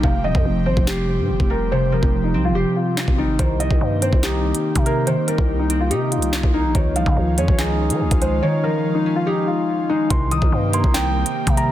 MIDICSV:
0, 0, Header, 1, 6, 480
1, 0, Start_track
1, 0, Tempo, 419580
1, 40, Time_signature, 4, 2, 24, 8
1, 13407, End_track
2, 0, Start_track
2, 0, Title_t, "Grand piano"
2, 0, Program_c, 0, 0
2, 46, Note_on_c, 0, 77, 79
2, 267, Note_off_c, 0, 77, 0
2, 279, Note_on_c, 0, 75, 82
2, 731, Note_off_c, 0, 75, 0
2, 759, Note_on_c, 0, 72, 79
2, 983, Note_off_c, 0, 72, 0
2, 998, Note_on_c, 0, 67, 90
2, 1676, Note_off_c, 0, 67, 0
2, 1721, Note_on_c, 0, 70, 78
2, 1945, Note_off_c, 0, 70, 0
2, 1964, Note_on_c, 0, 72, 87
2, 2186, Note_off_c, 0, 72, 0
2, 2201, Note_on_c, 0, 70, 73
2, 2539, Note_off_c, 0, 70, 0
2, 2562, Note_on_c, 0, 63, 76
2, 2785, Note_off_c, 0, 63, 0
2, 2801, Note_on_c, 0, 65, 85
2, 2913, Note_off_c, 0, 65, 0
2, 2918, Note_on_c, 0, 67, 89
2, 3143, Note_off_c, 0, 67, 0
2, 3159, Note_on_c, 0, 65, 67
2, 3610, Note_off_c, 0, 65, 0
2, 3640, Note_on_c, 0, 63, 90
2, 3864, Note_off_c, 0, 63, 0
2, 3880, Note_on_c, 0, 72, 77
2, 4104, Note_off_c, 0, 72, 0
2, 4117, Note_on_c, 0, 75, 83
2, 4570, Note_off_c, 0, 75, 0
2, 4601, Note_on_c, 0, 72, 85
2, 4824, Note_off_c, 0, 72, 0
2, 4840, Note_on_c, 0, 67, 84
2, 5517, Note_off_c, 0, 67, 0
2, 5558, Note_on_c, 0, 70, 84
2, 5783, Note_off_c, 0, 70, 0
2, 5799, Note_on_c, 0, 72, 89
2, 6024, Note_off_c, 0, 72, 0
2, 6036, Note_on_c, 0, 70, 79
2, 6376, Note_off_c, 0, 70, 0
2, 6400, Note_on_c, 0, 63, 84
2, 6624, Note_off_c, 0, 63, 0
2, 6639, Note_on_c, 0, 65, 83
2, 6752, Note_off_c, 0, 65, 0
2, 6754, Note_on_c, 0, 67, 87
2, 6981, Note_off_c, 0, 67, 0
2, 6995, Note_on_c, 0, 65, 72
2, 7448, Note_off_c, 0, 65, 0
2, 7482, Note_on_c, 0, 63, 89
2, 7705, Note_off_c, 0, 63, 0
2, 7720, Note_on_c, 0, 73, 71
2, 7944, Note_off_c, 0, 73, 0
2, 7962, Note_on_c, 0, 77, 81
2, 8412, Note_off_c, 0, 77, 0
2, 8446, Note_on_c, 0, 73, 90
2, 8667, Note_off_c, 0, 73, 0
2, 8677, Note_on_c, 0, 68, 84
2, 9355, Note_off_c, 0, 68, 0
2, 9400, Note_on_c, 0, 72, 83
2, 9624, Note_off_c, 0, 72, 0
2, 9638, Note_on_c, 0, 73, 86
2, 9863, Note_off_c, 0, 73, 0
2, 9878, Note_on_c, 0, 70, 80
2, 10217, Note_off_c, 0, 70, 0
2, 10236, Note_on_c, 0, 63, 84
2, 10462, Note_off_c, 0, 63, 0
2, 10477, Note_on_c, 0, 65, 90
2, 10590, Note_off_c, 0, 65, 0
2, 10598, Note_on_c, 0, 67, 86
2, 10823, Note_off_c, 0, 67, 0
2, 10835, Note_on_c, 0, 65, 76
2, 11288, Note_off_c, 0, 65, 0
2, 11319, Note_on_c, 0, 63, 89
2, 11544, Note_off_c, 0, 63, 0
2, 11565, Note_on_c, 0, 84, 85
2, 11787, Note_off_c, 0, 84, 0
2, 11801, Note_on_c, 0, 87, 90
2, 12252, Note_off_c, 0, 87, 0
2, 12286, Note_on_c, 0, 84, 86
2, 12507, Note_off_c, 0, 84, 0
2, 12516, Note_on_c, 0, 79, 98
2, 13194, Note_off_c, 0, 79, 0
2, 13239, Note_on_c, 0, 82, 92
2, 13407, Note_off_c, 0, 82, 0
2, 13407, End_track
3, 0, Start_track
3, 0, Title_t, "Analog synth pad"
3, 0, Program_c, 1, 89
3, 0, Note_on_c, 1, 60, 74
3, 0, Note_on_c, 1, 67, 93
3, 40, Note_on_c, 1, 55, 76
3, 41, Note_on_c, 1, 53, 81
3, 3833, Note_off_c, 1, 67, 0
3, 3841, Note_off_c, 1, 55, 0
3, 3842, Note_off_c, 1, 53, 0
3, 3881, Note_on_c, 1, 51, 82
3, 3881, Note_on_c, 1, 58, 76
3, 3881, Note_on_c, 1, 67, 87
3, 7674, Note_off_c, 1, 60, 0
3, 7682, Note_off_c, 1, 58, 0
3, 7682, Note_off_c, 1, 67, 0
3, 7721, Note_on_c, 1, 65, 93
3, 7722, Note_on_c, 1, 61, 75
3, 7723, Note_on_c, 1, 56, 78
3, 11515, Note_off_c, 1, 51, 0
3, 11522, Note_off_c, 1, 61, 0
3, 11522, Note_off_c, 1, 65, 0
3, 11523, Note_off_c, 1, 56, 0
3, 11560, Note_on_c, 1, 51, 85
3, 11560, Note_on_c, 1, 58, 76
3, 11560, Note_on_c, 1, 60, 73
3, 11560, Note_on_c, 1, 67, 92
3, 13407, Note_off_c, 1, 51, 0
3, 13407, Note_off_c, 1, 58, 0
3, 13407, Note_off_c, 1, 60, 0
3, 13407, Note_off_c, 1, 67, 0
3, 13407, End_track
4, 0, Start_track
4, 0, Title_t, "Harp"
4, 0, Program_c, 2, 46
4, 0, Note_on_c, 2, 58, 83
4, 0, Note_on_c, 2, 60, 91
4, 37, Note_on_c, 2, 48, 89
4, 276, Note_on_c, 2, 53, 77
4, 747, Note_off_c, 2, 60, 0
4, 752, Note_on_c, 2, 60, 79
4, 1000, Note_on_c, 2, 72, 98
4, 1715, Note_on_c, 2, 55, 77
4, 1953, Note_off_c, 2, 48, 0
4, 1967, Note_on_c, 2, 48, 97
4, 2017, Note_off_c, 2, 53, 0
4, 2198, Note_on_c, 2, 53, 82
4, 2516, Note_off_c, 2, 58, 0
4, 2674, Note_off_c, 2, 60, 0
4, 2678, Note_on_c, 2, 60, 84
4, 2911, Note_off_c, 2, 72, 0
4, 2916, Note_on_c, 2, 72, 91
4, 3630, Note_off_c, 2, 55, 0
4, 3644, Note_on_c, 2, 55, 81
4, 3885, Note_on_c, 2, 51, 91
4, 3937, Note_off_c, 2, 48, 0
4, 3937, Note_off_c, 2, 53, 0
4, 3937, Note_off_c, 2, 55, 0
4, 4118, Note_on_c, 2, 55, 82
4, 4593, Note_off_c, 2, 60, 0
4, 4597, Note_on_c, 2, 60, 83
4, 4836, Note_on_c, 2, 63, 99
4, 5180, Note_off_c, 2, 72, 0
4, 5564, Note_on_c, 2, 58, 83
4, 5787, Note_off_c, 2, 51, 0
4, 5800, Note_on_c, 2, 51, 92
4, 5857, Note_off_c, 2, 55, 0
4, 6043, Note_on_c, 2, 55, 77
4, 6513, Note_off_c, 2, 60, 0
4, 6518, Note_on_c, 2, 60, 94
4, 6755, Note_off_c, 2, 63, 0
4, 6759, Note_on_c, 2, 63, 95
4, 7471, Note_off_c, 2, 58, 0
4, 7476, Note_on_c, 2, 58, 82
4, 7710, Note_off_c, 2, 51, 0
4, 7724, Note_on_c, 2, 51, 89
4, 7777, Note_off_c, 2, 55, 0
4, 7965, Note_on_c, 2, 53, 80
4, 8446, Note_on_c, 2, 61, 81
4, 8515, Note_off_c, 2, 60, 0
4, 8672, Note_off_c, 2, 63, 0
4, 8676, Note_on_c, 2, 63, 91
4, 9400, Note_on_c, 2, 56, 82
4, 9625, Note_off_c, 2, 51, 0
4, 9639, Note_on_c, 2, 51, 93
4, 9697, Note_off_c, 2, 53, 0
4, 9697, Note_off_c, 2, 56, 0
4, 9881, Note_on_c, 2, 53, 80
4, 10360, Note_off_c, 2, 61, 0
4, 10365, Note_on_c, 2, 61, 89
4, 10596, Note_off_c, 2, 63, 0
4, 10601, Note_on_c, 2, 63, 95
4, 11154, Note_off_c, 2, 58, 0
4, 11320, Note_on_c, 2, 56, 83
4, 11561, Note_on_c, 2, 48, 101
4, 11617, Note_off_c, 2, 51, 0
4, 11617, Note_off_c, 2, 53, 0
4, 11617, Note_off_c, 2, 56, 0
4, 11630, Note_off_c, 2, 61, 0
4, 11798, Note_on_c, 2, 51, 79
4, 11857, Note_off_c, 2, 48, 0
4, 12276, Note_on_c, 2, 58, 91
4, 12517, Note_on_c, 2, 60, 105
4, 13241, Note_on_c, 2, 55, 84
4, 13407, Note_off_c, 2, 51, 0
4, 13407, Note_off_c, 2, 55, 0
4, 13407, Note_off_c, 2, 58, 0
4, 13407, Note_off_c, 2, 60, 0
4, 13407, Note_off_c, 2, 63, 0
4, 13407, End_track
5, 0, Start_track
5, 0, Title_t, "808-style bass"
5, 0, Program_c, 3, 38
5, 40, Note_on_c, 3, 29, 103
5, 280, Note_on_c, 3, 27, 103
5, 297, Note_off_c, 3, 29, 0
5, 394, Note_off_c, 3, 27, 0
5, 399, Note_on_c, 3, 41, 106
5, 514, Note_off_c, 3, 41, 0
5, 519, Note_on_c, 3, 29, 106
5, 759, Note_on_c, 3, 32, 101
5, 776, Note_off_c, 3, 29, 0
5, 873, Note_off_c, 3, 32, 0
5, 880, Note_on_c, 3, 29, 110
5, 1359, Note_on_c, 3, 44, 98
5, 1376, Note_off_c, 3, 29, 0
5, 1479, Note_on_c, 3, 29, 96
5, 1497, Note_off_c, 3, 44, 0
5, 1594, Note_off_c, 3, 29, 0
5, 1600, Note_on_c, 3, 29, 99
5, 2291, Note_off_c, 3, 29, 0
5, 2319, Note_on_c, 3, 29, 110
5, 2681, Note_on_c, 3, 36, 97
5, 2698, Note_off_c, 3, 29, 0
5, 2861, Note_on_c, 3, 29, 101
5, 2878, Note_off_c, 3, 36, 0
5, 3031, Note_off_c, 3, 29, 0
5, 3521, Note_on_c, 3, 32, 97
5, 3866, Note_off_c, 3, 32, 0
5, 3881, Note_on_c, 3, 36, 108
5, 4226, Note_off_c, 3, 36, 0
5, 4239, Note_on_c, 3, 36, 107
5, 4355, Note_off_c, 3, 36, 0
5, 4360, Note_on_c, 3, 43, 104
5, 4706, Note_off_c, 3, 43, 0
5, 4720, Note_on_c, 3, 36, 104
5, 5181, Note_off_c, 3, 36, 0
5, 5441, Note_on_c, 3, 48, 99
5, 5901, Note_off_c, 3, 48, 0
5, 6159, Note_on_c, 3, 36, 109
5, 6760, Note_on_c, 3, 48, 98
5, 6777, Note_off_c, 3, 36, 0
5, 7060, Note_on_c, 3, 36, 100
5, 7077, Note_off_c, 3, 48, 0
5, 7345, Note_off_c, 3, 36, 0
5, 7361, Note_on_c, 3, 36, 101
5, 7599, Note_on_c, 3, 34, 98
5, 7616, Note_off_c, 3, 36, 0
5, 7713, Note_off_c, 3, 34, 0
5, 7721, Note_on_c, 3, 37, 108
5, 7960, Note_on_c, 3, 36, 99
5, 7977, Note_off_c, 3, 37, 0
5, 8074, Note_off_c, 3, 36, 0
5, 8079, Note_on_c, 3, 49, 103
5, 8195, Note_off_c, 3, 49, 0
5, 8200, Note_on_c, 3, 37, 106
5, 8440, Note_on_c, 3, 41, 101
5, 8457, Note_off_c, 3, 37, 0
5, 8554, Note_off_c, 3, 41, 0
5, 8560, Note_on_c, 3, 37, 104
5, 9040, Note_on_c, 3, 53, 101
5, 9057, Note_off_c, 3, 37, 0
5, 9160, Note_on_c, 3, 37, 96
5, 9177, Note_off_c, 3, 53, 0
5, 9274, Note_off_c, 3, 37, 0
5, 9280, Note_on_c, 3, 37, 94
5, 9626, Note_off_c, 3, 37, 0
5, 11560, Note_on_c, 3, 36, 113
5, 11906, Note_off_c, 3, 36, 0
5, 11919, Note_on_c, 3, 36, 104
5, 12035, Note_off_c, 3, 36, 0
5, 12040, Note_on_c, 3, 43, 112
5, 12385, Note_off_c, 3, 43, 0
5, 12400, Note_on_c, 3, 36, 108
5, 12861, Note_off_c, 3, 36, 0
5, 13121, Note_on_c, 3, 48, 100
5, 13407, Note_off_c, 3, 48, 0
5, 13407, End_track
6, 0, Start_track
6, 0, Title_t, "Drums"
6, 40, Note_on_c, 9, 36, 116
6, 154, Note_off_c, 9, 36, 0
6, 399, Note_on_c, 9, 36, 102
6, 513, Note_off_c, 9, 36, 0
6, 880, Note_on_c, 9, 36, 105
6, 994, Note_off_c, 9, 36, 0
6, 999, Note_on_c, 9, 38, 125
6, 1010, Note_on_c, 9, 39, 97
6, 1113, Note_off_c, 9, 38, 0
6, 1124, Note_off_c, 9, 39, 0
6, 1601, Note_on_c, 9, 36, 103
6, 1715, Note_off_c, 9, 36, 0
6, 2319, Note_on_c, 9, 36, 95
6, 2434, Note_off_c, 9, 36, 0
6, 3401, Note_on_c, 9, 38, 125
6, 3412, Note_on_c, 9, 39, 98
6, 3515, Note_off_c, 9, 38, 0
6, 3521, Note_on_c, 9, 36, 102
6, 3527, Note_off_c, 9, 39, 0
6, 3636, Note_off_c, 9, 36, 0
6, 3880, Note_on_c, 9, 36, 113
6, 3880, Note_on_c, 9, 42, 70
6, 3994, Note_off_c, 9, 42, 0
6, 3995, Note_off_c, 9, 36, 0
6, 4121, Note_on_c, 9, 42, 74
6, 4235, Note_off_c, 9, 42, 0
6, 4239, Note_on_c, 9, 36, 100
6, 4354, Note_off_c, 9, 36, 0
6, 4601, Note_on_c, 9, 42, 90
6, 4715, Note_off_c, 9, 42, 0
6, 4720, Note_on_c, 9, 36, 103
6, 4835, Note_off_c, 9, 36, 0
6, 4840, Note_on_c, 9, 38, 123
6, 4841, Note_on_c, 9, 42, 82
6, 4851, Note_on_c, 9, 39, 96
6, 4954, Note_off_c, 9, 38, 0
6, 4955, Note_off_c, 9, 42, 0
6, 4966, Note_off_c, 9, 39, 0
6, 5200, Note_on_c, 9, 42, 80
6, 5315, Note_off_c, 9, 42, 0
6, 5440, Note_on_c, 9, 42, 81
6, 5441, Note_on_c, 9, 36, 99
6, 5554, Note_off_c, 9, 42, 0
6, 5555, Note_off_c, 9, 36, 0
6, 5561, Note_on_c, 9, 42, 82
6, 5675, Note_off_c, 9, 42, 0
6, 5800, Note_on_c, 9, 42, 71
6, 5915, Note_off_c, 9, 42, 0
6, 6040, Note_on_c, 9, 42, 78
6, 6154, Note_off_c, 9, 42, 0
6, 6159, Note_on_c, 9, 36, 98
6, 6273, Note_off_c, 9, 36, 0
6, 6520, Note_on_c, 9, 42, 87
6, 6634, Note_off_c, 9, 42, 0
6, 6760, Note_on_c, 9, 42, 84
6, 6875, Note_off_c, 9, 42, 0
6, 7000, Note_on_c, 9, 42, 71
6, 7115, Note_off_c, 9, 42, 0
6, 7120, Note_on_c, 9, 42, 82
6, 7235, Note_off_c, 9, 42, 0
6, 7240, Note_on_c, 9, 38, 122
6, 7252, Note_on_c, 9, 39, 101
6, 7355, Note_off_c, 9, 38, 0
6, 7361, Note_on_c, 9, 36, 100
6, 7366, Note_off_c, 9, 39, 0
6, 7475, Note_off_c, 9, 36, 0
6, 7721, Note_on_c, 9, 36, 115
6, 7721, Note_on_c, 9, 42, 71
6, 7835, Note_off_c, 9, 36, 0
6, 7835, Note_off_c, 9, 42, 0
6, 7960, Note_on_c, 9, 42, 76
6, 8075, Note_off_c, 9, 42, 0
6, 8079, Note_on_c, 9, 36, 96
6, 8194, Note_off_c, 9, 36, 0
6, 8440, Note_on_c, 9, 42, 85
6, 8555, Note_off_c, 9, 42, 0
6, 8560, Note_on_c, 9, 36, 108
6, 8674, Note_off_c, 9, 36, 0
6, 8679, Note_on_c, 9, 38, 117
6, 8679, Note_on_c, 9, 42, 81
6, 8690, Note_on_c, 9, 39, 96
6, 8793, Note_off_c, 9, 38, 0
6, 8794, Note_off_c, 9, 42, 0
6, 8804, Note_off_c, 9, 39, 0
6, 9039, Note_on_c, 9, 42, 80
6, 9154, Note_off_c, 9, 42, 0
6, 9280, Note_on_c, 9, 42, 80
6, 9281, Note_on_c, 9, 36, 99
6, 9394, Note_off_c, 9, 42, 0
6, 9395, Note_off_c, 9, 36, 0
6, 9400, Note_on_c, 9, 42, 83
6, 9514, Note_off_c, 9, 42, 0
6, 11560, Note_on_c, 9, 36, 116
6, 11560, Note_on_c, 9, 42, 73
6, 11674, Note_off_c, 9, 36, 0
6, 11674, Note_off_c, 9, 42, 0
6, 11800, Note_on_c, 9, 42, 83
6, 11915, Note_off_c, 9, 42, 0
6, 11919, Note_on_c, 9, 36, 102
6, 12033, Note_off_c, 9, 36, 0
6, 12280, Note_on_c, 9, 42, 91
6, 12395, Note_off_c, 9, 42, 0
6, 12400, Note_on_c, 9, 36, 111
6, 12514, Note_off_c, 9, 36, 0
6, 12519, Note_on_c, 9, 38, 124
6, 12520, Note_on_c, 9, 42, 85
6, 12531, Note_on_c, 9, 39, 99
6, 12634, Note_off_c, 9, 38, 0
6, 12635, Note_off_c, 9, 42, 0
6, 12645, Note_off_c, 9, 39, 0
6, 12881, Note_on_c, 9, 42, 83
6, 12995, Note_off_c, 9, 42, 0
6, 13121, Note_on_c, 9, 36, 100
6, 13121, Note_on_c, 9, 42, 82
6, 13235, Note_off_c, 9, 36, 0
6, 13236, Note_off_c, 9, 42, 0
6, 13241, Note_on_c, 9, 42, 84
6, 13355, Note_off_c, 9, 42, 0
6, 13407, End_track
0, 0, End_of_file